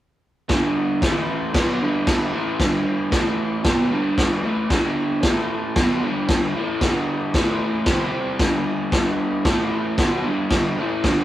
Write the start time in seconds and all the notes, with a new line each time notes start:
0.49 G2 D3 G3, kick, snare, crash
1.02 A2 E3 A3, kick, snare, crash
1.54 B2 F#3 B3, kick, snare, crash
1.81 G2 D3 G3
2.07 kick, snare, crash
2.32 A2 E3 A3
2.60 G2 D3 G3, kick, snare, crash
3.11 A2 E3 A3, kick, snare, crash
3.64 B2 F#3 B3, kick, snare, crash
3.91 G2 D3 G3
4.18 kick, snare, crash
4.43 A2 E3 A3
4.70 G2 D3 G3, kick, snare, crash
5.23 A2 E3 A3, kick, snare, crash
5.76 B2 F#3 B3, kick, snare, crash
6.03 G2 D3 G3
6.28 kick, snare, crash
6.56 A2 E3 A3
6.81 G2 D3 G3, kick, snare, crash
7.34 A2 E3 A3, kick, snare, crash
7.86 C3 G3, kick, snare, crash
7.90 C4
8.39 G2 D3 G3, kick, snare, crash
8.92 G2 D3 G3, kick, snare, crash
9.45 A2 E3 A3, kick, snare, crash
9.98 B2 F#3 B3, kick, snare, crash
10.25 G2 D3 G3
10.50 kick, snare, crash
10.78 A2 E3 A3
11.04 G2 D3 G3, kick, snare, crash